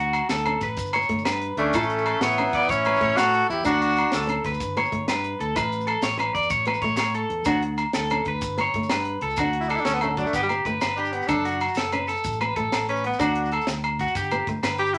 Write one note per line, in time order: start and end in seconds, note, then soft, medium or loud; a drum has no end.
0.00 0.20 D2 medium
0.00 0.29 F#4 medium
0.13 closed hi-hat soft
0.13 low agogo medium
0.13 maracas soft
0.29 0.55 D2 medium
0.29 0.60 A4 medium
0.29 snare medium
0.29 closed hi-hat medium
0.29 maracas medium
0.37 maracas soft
0.46 0.64 C#4 medium
0.46 closed hi-hat soft
0.46 low agogo medium
0.61 0.74 A1 medium
0.61 0.93 B4 medium
0.61 kick medium
0.61 snare soft
0.61 closed hi-hat soft
0.61 maracas soft
0.77 1.03 G1 medium
0.77 kick medium
0.77 closed hi-hat medium
0.77 maracas loud
0.86 maracas soft
0.93 1.04 B3 medium
0.93 1.24 C#5 medium
0.93 closed hi-hat medium
0.93 low agogo medium
0.93 maracas soft
1.02 maracas soft
1.09 1.22 G1 medium
1.09 1.27 A3 medium
1.09 kick medium
1.09 closed hi-hat medium
1.18 maracas soft
1.25 1.50 G2 medium
1.25 1.56 B4 medium
1.25 snare medium
1.25 closed hi-hat medium
1.25 low agogo medium
1.25 maracas medium
1.42 closed hi-hat soft
1.57 1.70 D2 medium
1.57 2.23 A3 medium
1.57 2.24 C#4 medium
1.57 1.73 D4 medium
1.57 closed hi-hat medium
1.73 2.12 A1 medium
1.73 1.93 E4 medium
1.73 2.04 A4 medium
1.73 kick medium
1.73 closed hi-hat medium
1.73 low agogo medium
1.73 maracas medium
1.82 maracas soft
1.90 closed hi-hat soft
1.90 maracas soft
1.98 maracas soft
2.06 2.21 A4 medium
2.06 closed hi-hat soft
2.06 low agogo medium
2.20 2.46 A1 medium
2.20 2.72 B3 medium
2.20 2.69 E4 medium
2.20 2.37 C#5 medium
2.20 snare medium
2.20 closed hi-hat medium
2.20 maracas medium
2.32 maracas soft
2.38 2.57 C#4 medium
2.38 closed hi-hat soft
2.38 low agogo medium
2.53 2.66 E2 medium
2.53 2.69 D5 medium
2.53 kick medium
2.53 snare soft
2.53 closed hi-hat soft
2.62 maracas soft
2.69 2.94 A1 loud
2.69 3.18 C#4 loud
2.69 3.21 E4 medium
2.69 2.85 C#5 medium
2.69 kick medium
2.69 closed hi-hat medium
2.69 maracas medium
2.85 2.95 B3 medium
2.85 3.01 B4 medium
2.85 closed hi-hat medium
2.85 low agogo medium
2.96 maracas soft
3.01 3.14 A1 medium
3.01 3.19 A3 medium
3.01 3.17 C#5 medium
3.01 kick medium
3.01 closed hi-hat soft
3.17 3.42 A2 medium
3.17 3.49 F#4 loud
3.17 3.50 A4 medium
3.17 3.33 C#5 medium
3.17 snare medium
3.17 closed hi-hat medium
3.17 low agogo medium
3.17 maracas loud
3.34 closed hi-hat soft
3.50 3.62 E2 loud
3.50 3.64 E4 medium
3.50 3.65 G4 medium
3.50 closed hi-hat soft
3.64 4.03 D2 loud
3.64 3.83 D4 medium
3.64 4.25 D4 medium
3.64 3.81 F#4 medium
3.64 4.25 F#4 medium
3.64 kick medium
3.64 closed hi-hat medium
3.64 low agogo medium
3.64 maracas loud
3.82 4.12 F#4 medium
3.82 closed hi-hat medium
3.82 maracas soft
3.89 maracas soft
3.97 closed hi-hat medium
3.97 low agogo medium
4.12 4.38 D2 medium
4.12 4.43 A4 medium
4.12 snare medium
4.12 closed hi-hat medium
4.12 maracas loud
4.27 4.46 C#4 medium
4.27 closed hi-hat medium
4.27 low agogo medium
4.44 4.57 D2 medium
4.44 4.75 B4 medium
4.44 kick medium
4.44 snare soft
4.44 closed hi-hat soft
4.54 maracas soft
4.60 4.85 G1 loud
4.60 kick medium
4.60 closed hi-hat medium
4.60 maracas loud
4.77 4.86 B3 medium
4.77 5.07 C#5 medium
4.77 closed hi-hat soft
4.77 low agogo medium
4.85 maracas soft
4.92 5.05 G1 medium
4.92 5.10 A3 medium
4.92 kick medium
4.92 closed hi-hat soft
5.08 5.33 G2 medium
5.08 5.38 B4 medium
5.08 snare medium
5.08 closed hi-hat medium
5.08 low agogo medium
5.08 maracas loud
5.24 closed hi-hat soft
5.40 5.52 D2 medium
5.40 5.55 A4 medium
5.40 closed hi-hat soft
5.56 5.93 A1 loud
5.56 5.74 E4 medium
5.56 5.86 B4 loud
5.56 kick medium
5.56 closed hi-hat medium
5.56 low agogo medium
5.56 maracas loud
5.72 closed hi-hat soft
5.72 maracas soft
5.81 maracas soft
5.87 6.02 A4 medium
5.87 closed hi-hat soft
5.87 low agogo medium
6.02 6.28 A1 medium
6.02 6.18 C#5 medium
6.02 snare medium
6.02 closed hi-hat medium
6.02 maracas loud
6.18 6.36 C#4 medium
6.18 6.34 B4 medium
6.18 closed hi-hat medium
6.18 low agogo medium
6.34 6.47 E2 medium
6.34 6.50 D5 medium
6.34 kick medium
6.34 closed hi-hat medium
6.42 maracas soft
6.50 6.76 A1 loud
6.50 6.66 C#5 medium
6.50 kick medium
6.50 closed hi-hat medium
6.50 maracas loud
6.65 6.76 B3 medium
6.65 6.82 B4 medium
6.65 closed hi-hat soft
6.65 low agogo medium
6.74 maracas soft
6.82 6.95 A1 loud
6.82 7.02 A3 medium
6.82 6.96 C#5 medium
6.82 kick medium
6.82 closed hi-hat medium
6.97 7.23 A2 medium
6.97 7.13 C#5 medium
6.97 snare medium
6.97 closed hi-hat medium
6.97 low agogo medium
6.97 maracas loud
7.14 7.45 A4 medium
7.14 closed hi-hat soft
7.30 7.43 E2 medium
7.30 closed hi-hat soft
7.45 7.84 D2 loud
7.45 7.64 D4 medium
7.45 7.62 F#4 medium
7.45 kick medium
7.45 closed hi-hat medium
7.45 low agogo medium
7.45 maracas loud
7.62 closed hi-hat medium
7.77 closed hi-hat soft
7.77 low agogo medium
7.77 maracas soft
7.93 8.20 D2 medium
7.93 8.25 A4 medium
7.93 snare medium
7.93 closed hi-hat medium
7.93 maracas loud
8.10 8.29 C#4 medium
8.10 closed hi-hat soft
8.10 low agogo medium
8.25 8.39 D2 medium
8.25 8.58 B4 medium
8.25 kick medium
8.25 closed hi-hat soft
8.41 8.67 G1 medium
8.41 kick medium
8.41 closed hi-hat medium
8.41 maracas loud
8.57 8.67 B3 medium
8.57 8.90 C#5 medium
8.57 closed hi-hat soft
8.57 low agogo medium
8.74 8.87 G1 medium
8.74 8.93 A3 medium
8.74 kick medium
8.74 closed hi-hat soft
8.83 maracas soft
8.89 9.16 G2 medium
8.89 9.21 B4 medium
8.89 snare medium
8.89 closed hi-hat medium
8.89 low agogo medium
8.89 maracas loud
9.05 closed hi-hat soft
9.21 9.34 C#2 medium
9.21 9.37 A4 medium
9.21 closed hi-hat medium
9.30 maracas soft
9.36 9.75 D2 loud
9.36 9.57 D4 medium
9.36 9.69 F#4 medium
9.36 kick medium
9.36 closed hi-hat medium
9.36 low agogo medium
9.36 maracas medium
9.53 closed hi-hat soft
9.61 9.70 E4 medium
9.61 maracas soft
9.69 9.77 D4 medium
9.69 9.84 A4 medium
9.69 closed hi-hat soft
9.69 low agogo medium
9.76 9.87 D4 medium
9.76 9.81 E4 medium
9.76 maracas soft
9.85 10.23 D2 medium
9.85 9.95 C#4 medium
9.85 10.16 A4 medium
9.85 snare medium
9.85 closed hi-hat medium
9.85 maracas medium
9.94 10.04 B3 medium
10.01 10.11 A3 medium
10.01 10.21 C#4 medium
10.01 closed hi-hat soft
10.01 low agogo medium
10.10 10.18 D3 soft
10.17 10.28 F#3 medium
10.17 10.33 D4 medium
10.17 kick medium
10.17 closed hi-hat soft
10.17 maracas soft
10.26 10.36 A3 medium
10.26 maracas soft
10.33 10.59 G1 medium
10.33 10.42 B3 medium
10.33 10.64 G4 medium
10.33 kick medium
10.33 closed hi-hat medium
10.33 maracas medium
10.43 10.47 G3 medium
10.49 10.59 B3 medium
10.49 closed hi-hat soft
10.49 low agogo medium
10.49 maracas soft
10.65 10.78 G1 medium
10.65 10.84 A3 medium
10.65 10.81 B4 medium
10.65 kick medium
10.65 closed hi-hat soft
10.65 maracas soft
10.81 11.20 G1 medium
10.81 10.97 B4 medium
10.81 snare medium
10.81 closed hi-hat medium
10.81 low agogo medium
10.81 maracas medium
10.96 11.14 D4 medium
10.96 11.28 G4 medium
10.96 closed hi-hat soft
11.05 maracas soft
11.13 11.29 B3 medium
11.13 closed hi-hat soft
11.22 maracas soft
11.27 11.67 F#1 loud
11.27 11.60 D4 medium
11.27 11.47 D4 medium
11.27 11.44 A4 medium
11.27 kick medium
11.27 closed hi-hat medium
11.27 low agogo medium
11.27 maracas medium
11.45 11.75 F#4 medium
11.45 closed hi-hat medium
11.51 maracas soft
11.61 closed hi-hat medium
11.61 low agogo medium
11.68 maracas soft
11.75 12.14 F#1 medium
11.75 11.92 A4 medium
11.75 snare medium
11.75 closed hi-hat medium
11.75 maracas medium
11.92 12.11 C#4 medium
11.92 12.08 B4 medium
11.92 closed hi-hat medium
11.92 low agogo medium
12.07 12.39 A4 medium
12.07 snare soft
12.07 closed hi-hat medium
12.07 maracas soft
12.17 maracas soft
12.24 12.50 A1 medium
12.24 kick medium
12.24 closed hi-hat medium
12.24 maracas medium
12.33 maracas soft
12.41 12.50 B3 medium
12.41 12.56 B4 medium
12.41 closed hi-hat soft
12.41 low agogo medium
12.41 maracas soft
12.56 12.69 A1 medium
12.56 12.75 A3 medium
12.56 12.87 A4 medium
12.56 kick medium
12.56 closed hi-hat soft
12.56 maracas soft
12.72 13.10 A1 medium
12.72 snare medium
12.72 closed hi-hat medium
12.72 low agogo medium
12.72 maracas medium
12.89 13.04 C#4 medium
12.89 13.04 B4 medium
12.89 closed hi-hat soft
12.96 maracas soft
13.04 13.22 B3 medium
13.04 muted clean electric guitar stroke medium
13.04 closed hi-hat soft
13.13 maracas soft
13.19 13.57 D2 loud
13.19 13.38 D4 medium
13.19 13.52 D4 medium
13.19 13.50 F#4 medium
13.19 kick medium
13.19 closed hi-hat medium
13.19 low agogo medium
13.19 maracas medium
13.35 closed hi-hat soft
13.45 maracas soft
13.52 13.67 A4 medium
13.52 closed hi-hat soft
13.52 low agogo medium
13.61 maracas soft
13.67 14.05 D2 medium
13.67 muted clean electric guitar stroke medium
13.67 snare medium
13.67 closed hi-hat medium
13.67 maracas medium
13.84 closed hi-hat soft
13.84 low agogo medium
13.99 14.15 F#4 medium
13.99 kick medium
13.99 closed hi-hat soft
13.99 maracas soft
14.07 maracas soft
14.15 14.41 G1 medium
14.15 14.46 G4 medium
14.15 kick medium
14.15 closed hi-hat medium
14.15 maracas medium
14.31 14.41 B3 medium
14.31 closed hi-hat soft
14.31 low agogo medium
14.31 maracas soft
14.47 14.60 G1 medium
14.47 14.66 A3 medium
14.47 muted clean electric guitar stroke medium
14.47 kick medium
14.47 closed hi-hat soft
14.47 maracas soft
14.63 14.98 G1 medium
14.63 14.79 B4 medium
14.63 snare medium
14.63 closed hi-hat medium
14.63 low agogo medium
14.63 maracas loud
14.78 14.96 G4 medium
14.78 14.98 G4 medium
14.78 closed hi-hat medium
14.86 maracas soft
14.94 14.98 E4 medium
14.94 closed hi-hat medium